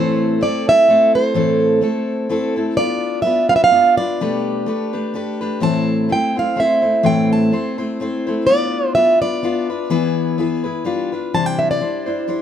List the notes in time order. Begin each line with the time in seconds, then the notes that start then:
Already playing: A2 E3 A3 C4 E4 A4 C5
0.41 A3 C4 E4 A4 D5
0.67 A3 C4 E4 A4 E5
0.88 A3 C4 E4 A4
1.15 C5
1.34 A2 E3 A3 C4 E4 A4
1.81 A3 C4 E4 A4
2.29 A3 C4 E4 A4
2.56 A3 C4 E4 A4
2.77 B3 D4 F4 B4 D5
3.22 B3 D4 F4 E5
3.26 B4
3.49 D4 F4 B4 F5
3.56 E5
3.64 F5
3.71 B3 D4 F4 B4
3.97 D4 F4 B4 D5
4.21 B2 G3 A3 D4 G4 B4
4.66 A3 D4 G4 B4
4.93 A3 D4 G4 B4
5.14 A3 D4 G4 B4
5.41 A3 D4 G4 B4
5.60 A2 E3 A3 C4 E4 C5 A5
6.09 A3 C4 E4 C5 G5
6.36 A3 C4 E4 C5 F5
6.56 A3 C4 E4 C5
6.60 E5
6.82 A3 C4 E4 C5
7.03 A2 E3 A3 C4 E4 C5 G5
7.33 A5
7.51 A3 C4 E4 C5
7.78 A3 C4 E4 C5
8.00 A3 C4 E4 C5
8.27 A3 C4 E4 C5
8.47 B3 D4 F4 B4 D5
8.95 B3 D4 F4 B4 E5
9.22 D4 F4 B4 D5
9.43 B3 D4 F4 B4
9.70 D4 F4 B4
9.90 E3 B3 E4 G#4 B4
10.38 B3 E4 G#4 B4
10.64 E4 G#4 B4
10.84 G3 D4 F4 B4
11.12 D4 F4 B4
11.34 C3 E3 G3 D4 E4 C5 A5
11.46 G5
11.59 E5
11.71 D5
11.80 G3 D4 E4 C5
12.06 G3 D4 E4 C5
12.28 G3 D4 E4 C5